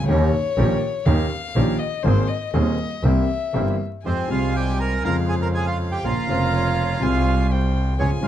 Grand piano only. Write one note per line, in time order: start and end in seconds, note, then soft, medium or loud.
0.03 0.09 D2 medium
0.08 0.29 D#2 medium
0.08 0.29 D#3 loud
0.08 0.29 A#3 medium
0.08 0.29 C#4 medium
0.08 0.29 G4 medium
0.57 0.78 A#1 loud
0.57 0.78 A#2 loud
0.57 0.78 D#3 medium
0.57 0.78 A#3 medium
0.57 0.78 C#4 medium
0.57 0.79 G4 medium
1.06 1.27 D#2 medium
1.06 1.27 D#3 medium
1.06 1.27 A#3 medium
1.06 1.27 C#4 medium
1.06 1.27 G4 medium
1.56 1.77 A#1 medium
1.56 1.77 A#2 medium
1.56 1.77 D#3 medium
1.56 1.76 A#3 medium
1.56 1.77 C#4 medium
1.56 1.77 G4 medium
2.03 2.25 G#1 medium
2.03 2.25 G#2 medium
2.03 2.25 D#3 medium
2.03 2.25 A#3 medium
2.03 2.25 C4 medium
2.03 2.25 G#4 medium
2.54 2.75 D#1 medium
2.54 2.75 D#2 medium
2.54 2.75 D#3 medium
2.54 2.75 A#3 medium
2.54 2.75 C4 medium
2.54 2.75 G#4 medium
3.05 3.26 C2 medium
3.05 3.26 C3 medium
3.05 3.26 E3 medium
3.05 3.26 A#3 medium
3.05 3.26 C4 medium
3.05 3.26 G4 medium
3.54 3.76 G1 medium
3.54 3.75 G2 medium
3.54 3.76 E3 medium
3.54 3.76 A#3 medium
3.54 3.76 C4 medium
3.54 3.76 G4 medium
4.05 4.26 F2 soft
4.05 4.26 F3 soft
4.05 4.26 G#3 soft
4.05 4.27 C4 soft
4.05 4.27 G4 soft
4.27 5.01 C2 medium
4.27 5.01 C3 medium
4.27 5.00 F3 medium
4.27 5.00 G#3 medium
4.27 5.01 C4 medium
4.32 5.02 G3 medium
5.03 5.99 F2 medium
5.03 5.98 C#3 medium
5.03 5.99 F3 medium
5.03 6.00 G#3 medium
5.03 6.00 F4 medium
6.04 6.25 A#1 medium
6.04 6.25 A#2 medium
6.04 6.25 C#3 soft
6.04 6.25 F3 soft
6.04 6.25 A#3 soft
6.04 6.25 F4 soft
6.27 6.99 F1 medium
6.27 6.99 F2 medium
6.27 6.98 C#3 medium
6.27 6.98 F3 medium
6.27 6.99 A#3 medium
6.31 7.00 F4 medium
7.00 7.94 C2 medium
7.00 7.94 C3 medium
7.00 7.94 G3 medium
7.00 7.94 G#3 medium
7.00 7.95 F4 medium
7.99 8.20 C#2 medium
7.99 8.19 C#3 medium
7.99 8.20 F3 soft
7.99 8.20 G#3 soft
7.99 8.20 F4 medium
8.20 8.28 G#1 medium
8.20 8.28 G#2 medium
8.20 8.28 C#3 medium
8.20 8.28 F3 medium
8.20 8.28 G#3 medium
8.24 8.28 F4 medium